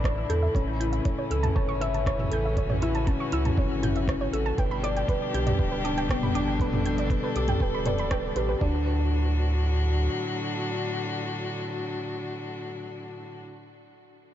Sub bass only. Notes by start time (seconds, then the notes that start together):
Already playing: A1
0.29 E2
0.55 A1
1.30 C#2
1.56 G1
2.31 A1
3.32 C#2
3.57 G1
4.33 A1
4.58 G1
5.34 B1
5.59 D1
6.34 G1
7.35 B1
7.60 D1
8.35 A1
8.61 D2